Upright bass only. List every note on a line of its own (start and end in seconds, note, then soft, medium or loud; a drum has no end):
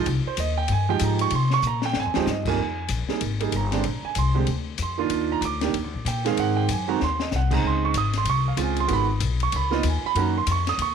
0.06 0.24 C2 loud
0.25 muted upright bass stroke soft
0.38 0.68 D#2 medium
0.69 0.99 G2 medium
1.01 1.31 G#2 loud
1.31 1.62 C3 medium
1.62 1.93 A#2 loud
1.94 2.05 G#2 medium
2.05 2.15 F2 medium
2.15 2.25 D#2 medium
2.26 2.56 G2 loud
2.57 2.88 F2 medium
2.89 3.07 A#1 medium
3.09 muted upright bass stroke soft
3.21 3.51 G#1 medium
3.52 3.83 G1 medium
3.85 4.03 A#1 medium
4.03 muted upright bass stroke soft
4.16 4.46 C2 medium
4.47 4.78 D2 medium
4.78 5.09 F2 loud
5.09 5.40 D#2 medium
5.41 5.72 D2 medium
5.73 5.84 D#2 medium
5.84 5.94 D2 medium
5.94 6.04 A#1 medium
6.05 6.35 A#2 medium
6.37 6.67 G#2 medium
6.68 6.99 F#2 medium
7.01 7.31 D#2 medium
7.32 7.62 C2 medium
7.63 7.94 C#2 medium
7.94 8.24 G#1 medium
8.25 8.56 C2 medium
8.57 8.88 C#2 loud
8.88 9.19 G#1 medium
9.20 9.51 B1 medium
9.53 9.83 C#2 medium
9.83 10.02 D#2 loud
10.03 muted upright bass stroke soft
10.15 10.46 F#2 medium
10.47 10.77 F2 loud
10.78 10.95 D#2 medium